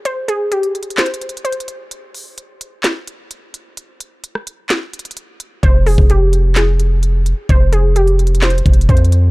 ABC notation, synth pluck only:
X:1
M:4/4
L:1/8
Q:1/4=129
K:Fm
V:1 name="Synth pluck"
c A G2 c2 c z | z8 | z8 | c A G2 A4 |
c A G2 c2 c z |]